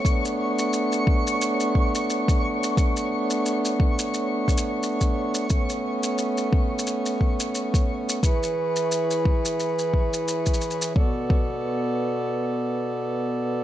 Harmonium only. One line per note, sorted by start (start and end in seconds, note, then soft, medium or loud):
0.00 8.19 A3 medium
0.05 5.46 B3 medium
0.05 5.47 D4 medium
5.51 8.21 B3 medium
5.51 8.21 C#4 medium
8.23 10.93 E3 medium
8.23 10.93 E4 medium
8.23 10.93 G#4 medium
8.23 10.93 B4 medium
10.96 13.64 B2 medium
10.96 13.64 B3 medium
10.96 13.64 A4 medium
10.96 13.64 D5 medium